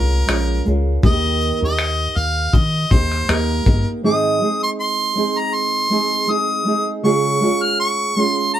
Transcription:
Already playing: C2 G#3 C#4 F4 A#4
0.27 A#1 G#3 C#4 F4 A#4, finger snap, shaker
0.65 C#2 G#3 C#4 F4 A#4, shaker
1.03 D#2 D#3 A#3 D#4 G4 A#4 D#5, kick, shaker
1.40 shaker
1.61 D#2 D#4 G4 A#4 D#5
1.78 finger snap, shaker
2.16 D#2 F5, shaker
2.53 D#3 D#5, kick, shaker
2.91 D#2 A#3 D#4 G4 A#4 C5, kick, shaker
3.12 finger snap, shaker
3.28 D#2 A#3 D#4 G4 A#4, finger snap, shaker
3.65 G1 A#3 D#4 G4 A#4, kick, shaker
4.03 G#2 D#3 G#3 C4 D#4 G#4 D#6
4.41 G#3 C4 D#4 G#4
4.63 C6
4.80 C6
5.15 G#3 C4 D#4 G#4
5.38 A#5
5.54 C6
5.90 G#3 C4 D#4 G#4
6.27 G#3 C4 D#4 G#4 D#6
6.65 G#3 C4 D#4 G#4
7.03 C#3 G#3 C#4 F4 G#4 C#6
7.41 G#3 C#4 F4 G#4
7.62 F6
7.80 C#6
8.16 G#3 C#4 F4 G#4 C6
8.38 C6
8.54 A#5

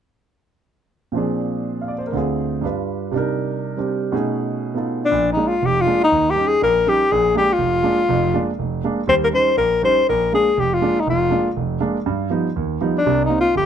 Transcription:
1.12 A#2 F3 C4
1.16 D4 G#4
1.81 F5
1.88 D5
1.98 C5
2.07 A#4
2.12 D2 D3 C4 F4
2.17 G#4
2.62 G2 G3 D4 F4
2.66 B4
3.12 C3 G3 D4
3.16 D#4 A#4
3.77 G3 C4 D4 G4
4.12 B2 A3 C#4 D#4 G#4
4.75 B3 D#4 F4 A4
5.05 D4
5.11 A#1
5.32 D#4
5.37 G#3 A#3 D4
5.48 F4
5.62 F1 G4
5.81 F4
5.86 G#3 A#3 D4
6.04 D#4
6.12 D#2
6.30 G4
6.36 G3 C#4 D#4
6.47 G#4
6.62 A#1 A#4
6.86 G3 C#4 D#4 G4
7.12 A#1 G#4
7.35 G#3 A#3 D4 G4
7.53 F4
7.58 F1
7.83 G#3 A#3 D4
8.09 F1 F2
8.34 G#3 A#3 D4
8.59 F1
8.84 G#3 A#3 D4
9.07 D#2 G3 C5
9.24 A#4
9.33 G3 C#4 D#4 C5
9.57 A#1 A#4
9.82 G3 C#4 D#4 C5
10.09 A#1 A#4
10.32 G#3 A#3 D4 G#4
10.57 F1 G4
10.74 F4
10.82 G#3 A#3 D4
11.00 D#4
11.07 F1 F4
11.30 G#3 A#3 D4
11.56 F1
11.80 G#3 A#3 D4
12.06 G2
12.30 F3 G3 B3 D#4
12.56 D#2
12.81 F3 G3 B3 D#4
12.98 D4
13.06 C2 C3
13.24 D#4
13.29 A#3 C4 D#4
13.41 F4
13.55 G1 G4

